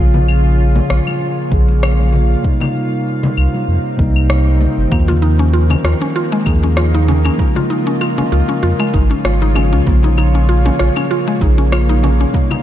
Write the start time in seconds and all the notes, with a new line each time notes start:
Already playing: A#1 A#2 C#3 F3 C#4 F4 G#4
0.00 A#3 F4
0.11 A#3, muted conga, low conga, shaker
0.28 claves, shaker
0.46 shaker
0.60 shaker
0.76 muted conga, low conga, shaker
0.83 C#5 F5
0.90 A#1, cross-stick, shaker
1.07 high conga, claves, shaker
1.21 high conga, shaker
1.38 shaker
1.50 A#1 C#3 F3 A#3, kick, high conga, shaker
1.54 G#4
1.68 muted conga, shaker
1.83 cross-stick, claves, shaker
1.99 high conga, shaker
2.13 low conga, shaker
2.31 shaker
2.43 C3 G3 A#3 D#4, kick, shaker
2.60 muted conga, low conga, claves, shaker
2.71 C4
2.76 high conga, shaker
2.92 shaker
2.99 D#4
3.07 shaker
3.23 A#4, muted conga, low conga, shaker
3.37 C2, claves, shaker
3.54 G5, high conga, shaker
3.68 F2, shaker
3.86 shaker
3.97 C2 C3 G3 A#3 D#4, kick, high conga, shaker
4.16 claves, shaker
4.30 cross-stick, shaker
4.47 high conga, shaker
4.61 low conga, shaker
4.78 G1, shaker
4.90 D#2 D#3 F3 A#3, kick, claves, shaker
4.94 F4
4.98 A#3
5.04 D#5
5.08 F4, muted conga, low conga, shaker
5.22 D#4, shaker
5.39 C#4 F4, shaker
5.53 F4, shaker
5.60 A#4
5.70 C#4, muted conga, low conga, claves, shaker
5.84 D#2 F4, cross-stick, shaker
6.01 C#4, high conga, shaker
6.15 F4, high conga, shaker
6.32 G#3, shaker
6.44 D#2 D#3 F3 A#3 D#4 G#4, kick, high conga, claves, shaker
6.63 C#4, muted conga, shaker
6.77 F4, cross-stick, shaker
6.94 D#4, high conga, shaker
7.08 C#4, low conga, shaker
7.25 C#4, claves, shaker
7.37 C#3 F3 G#3 A#3 F4, kick, shaker
7.56 F4, muted conga, low conga, shaker
7.64 G#3
7.70 D#4, high conga, shaker
7.87 C#4, shaker
7.98 F4 C#5, claves, shaker
8.18 C#4, muted conga, low conga, shaker
8.32 C#2 F4, shaker
8.42 G#4
8.48 C#4, high conga, shaker
8.63 F2 F4, shaker
8.80 G#3, claves, shaker
8.94 G#1 D#4, kick, high conga, shaker
9.11 C#4, shaker
9.24 G#1 F4, cross-stick, shaker
9.42 D#4, high conga, shaker
9.55 C#3 F3 G#3 C#4 F4, low conga, claves, shaker
9.73 C#2 C#4, shaker
9.85 A#1 A#2 C#3 F3 A#3 F4, kick, shaker
10.03 A#3 D#4, muted conga, low conga, shaker
10.18 D#4, claves, shaker
10.35 C#4, shaker
10.49 F4, shaker
10.65 C#4 F5, muted conga, low conga, shaker
10.79 A#1 F4, cross-stick, shaker
10.96 C#4, high conga, claves, shaker
11.11 F4, high conga, shaker
11.28 G#3, shaker
11.39 A#1 C#3 F3 A#3 D#4, kick, high conga, shaker
11.44 G#4
11.58 C#4, muted conga, shaker
11.72 F4, cross-stick, claves, shaker
11.89 D#4, high conga, shaker
12.03 C#4, low conga, shaker
12.20 C#4, shaker
12.31 C3 G3 A#3, kick, shaker
12.35 D#4
12.46 C4
12.50 D#4, muted conga, low conga, claves, shaker